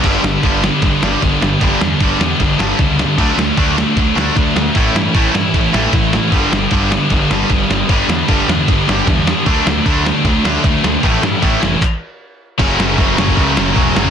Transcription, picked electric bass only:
\new Staff \with { instrumentName = "Picked electric bass" } { \clef bass \time 4/4 \key g \lydian \tempo 4 = 153 g,,8 g,,8 g,,4 g,,8 g,,8 g,,8 g,,8 | g,,8 e,8 g,,8 e,8 g,,8 g,,8 cis,4 | d,8 d,8 d,4 d,8 d,8 d,8 d,8 | a,,8 g,8 a,,8 g,8 a,,8 a,,8 a,,4 |
g,,8 g,,8 g,,4 g,,8 g,,8 g,,8 g,,8 | g,,8 e,8 g,,8 e,8 g,,8 g,,8 e,4 | d,8 d,8 d,4 d,8 d,8 d,8 d,8 | a,,8 g,8 a,,8 f,,8 r2 |
\key fis \minor fis,,8 fis,,8 fis,,8 fis,,8 cis,8 fis,,8 e,,8 fis,,8 | }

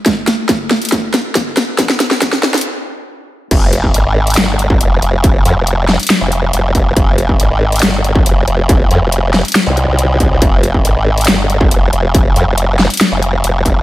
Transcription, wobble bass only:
\new Staff \with { instrumentName = "Wobble bass" } { \clef bass \time 4/4 \key f \minor \tempo 4 = 139 r1 | r1 | f,,4 aes,,16 aes,,8. g,,4 f,,8 f,,8~ | f,,8 f,16 f,,4 r8 f,,8. f,,4 |
f,,4 aes,,16 aes,,8. g,,4 f,,8 f,,8~ | f,,8 f,16 f,,4 r8 c,8 c,4 c,16 | f,,4 aes,,16 aes,,8. g,,4 f,,8 f,,8~ | f,,8 f,16 f,,4 r8 f,,8. f,,4 | }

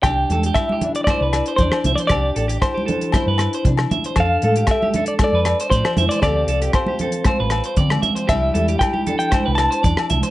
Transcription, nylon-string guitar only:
\new Staff \with { instrumentName = "Nylon-string guitar" } { \time 4/4 \key c \major \tempo 4 = 116 << { d'8 g'8 e'8 d'8 e'4 d'4 | d'8 g'8 e'8 d'8 e'4 d'4 | d'8 a'8 a'8 d'8 a'2 | <f c' f' a'>8 a'8 f'8 c'8 f'4 c'4 |
<g d' e' g'>8 g'8 e'8 d'8 e'4 d'4 | } \\ { c4 g4 g,4 g4 | c4 g4 g,4 g4 | f4 c'4 c4 f8 e8 | r4 f4 a,4 r4 |
r4 g4 g,4 g4 | } >> }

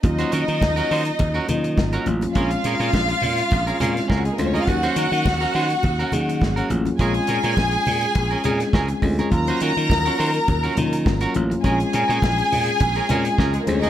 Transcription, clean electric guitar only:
\new Staff \with { instrumentName = "Clean electric guitar" } { \time 4/4 \key ees \dorian \tempo 4 = 104 r16 <des' ges' c''>16 <des' ges' bes'>16 r8 <des' ges' bes'>16 <des' ges' c''>16 r8 <des' ges' bes'>16 r8. <des' ges' bes'>16 r8 | <des' aes' bes'>16 r16 <des' aes' bes'>16 <des' aes' bes'>16 r4 r16 <des' aes' bes'>16 <des' aes' bes'>16 r16 <des' aes' bes'>16 r8 <des' aes' bes'>16 | r16 <des' ges' c''>16 <des' ges' bes'>16 r8 <des' ges' bes'>16 <des' ges' c''>16 r8 <des' ges' bes'>16 r8. <des' ges' bes'>16 r8 | <des' aes' bes'>16 r16 <des' aes' bes'>16 <des' aes' bes'>16 r4 r16 <des' aes' bes'>16 <des' aes' bes'>16 r16 <des' aes' bes'>16 r8 <des' aes' bes'>16 |
r16 <des' ges' c''>16 <des' ges' bes'>16 r8 <des' ges' bes'>16 <des' ges' c''>16 r8 <des' ges' bes'>16 r8. <des' ges' bes'>16 r8 | <des' aes' bes'>16 r16 <des' aes' bes'>16 <des' aes' bes'>16 r4 r16 <des' aes' bes'>16 <des' aes' bes'>16 r16 <des' aes' bes'>16 r8 <des' aes' bes'>16 | }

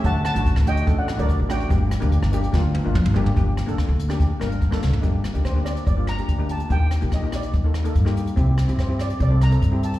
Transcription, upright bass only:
\new Staff \with { instrumentName = "Upright bass" } { \clef bass \time 4/4 \key g \minor \tempo 4 = 144 d,8. a,,8 d,8. a,,8. d,8 a,,8. | g,,8. d,8 g,,8. d,8. g,,8 g,,8. | g,,8. d,16 r16 d,4~ d,16 g,,4 d,16 r16 | g,,8. d,4~ d,16 g,,4 d,4 |
ees,8. bes,,4~ bes,,16 ees,4 g,4 | c,8. g,4~ g,16 c,4 g,4 | }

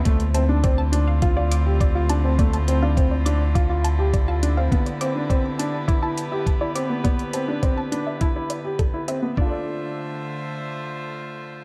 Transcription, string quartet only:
\new Staff \with { instrumentName = "String quartet" } { \time 4/4 \key d \dorian \tempo 4 = 103 << { <a c' e' f'>1~ | <a c' e' f'>1 | <b g' b'>1~ | <b g' b'>1 |
<d a f' c'' e''>1 | } \\ { d1~ | d1~ | d1~ | d1 |
r1 | } >> }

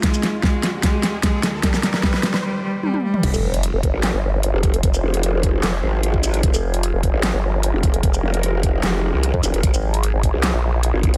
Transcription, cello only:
\new Staff \with { instrumentName = "Cello" } { \clef bass \time 4/4 \key f \minor \tempo 4 = 150 aes4 aes4 aes4 aes4 | g8 g8 g8 g8 g8 g8 g8 g8 | r1 | r1 |
r1 | r1 | r1 | }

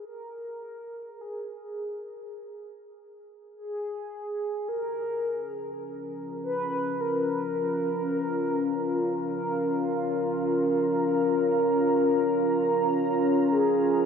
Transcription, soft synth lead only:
\new Staff \with { instrumentName = "Soft synth lead" } { \time 4/4 \key bes \minor \tempo 4 = 51 bes'4 aes'4 r4 aes'4 | bes'4 r8 ces''8 bes'2 | bes'2.~ bes'8 aes'8 | }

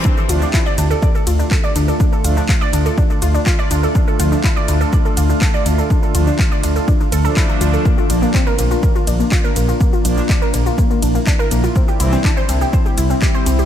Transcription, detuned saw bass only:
\new Staff \with { instrumentName = "Detuned saw bass" } { \clef bass \time 4/4 \key d \minor \tempo 4 = 123 r8 d,8 r8 d,8 r8 d,8 r8 d,8 | r8 d,8 r8 d,8 r8 d,8 r8 d,8 | r8 d,8 r8 d,8 r8 d,8 r8 d,8 | r8 d,8 r8 d,8 r8 d,8 r8 d,8 |
r8 bes,,8 r8 bes,,8 r8 bes,,8 r8 bes,,8 | r8 bes,,8 r8 bes,,8 r8 bes,,8 r8 bes,,8 | r8 c,8 r8 c,8 r8 c,8 r8 c,8 | }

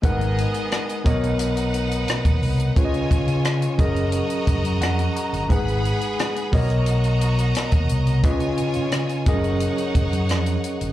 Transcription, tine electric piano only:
\new Staff \with { instrumentName = "Tine electric piano" } { \time 4/4 \key fis \major \tempo 4 = 88 <gis dis' ais' b' fis''>4. <b, b ais' cis'' dis''>4. r4 | <cis cis' eis' b' cis'' dis''>4. <fis cis' gis' ais' dis''>4. fis''8 ais''8 | <gis dis' gis' b' fis''>4. <b, b ais' cis'' dis''>4. r4 | <cis cis' eis' b' dis''>4. <fis cis' gis' ais' dis''>4. r4 | }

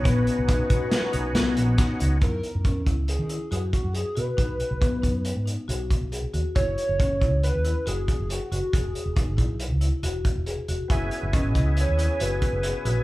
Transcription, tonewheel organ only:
\new Staff \with { instrumentName = "Tonewheel organ" } { \time 5/4 \key fis \mixolydian \tempo 4 = 138 <b cis' dis' fis'>1~ <b cis' dis' fis'>4 | r1 r4 | r1 r4 | r1 r4 |
r1 r4 | <b cis' e' gis'>1~ <b cis' e' gis'>4 | }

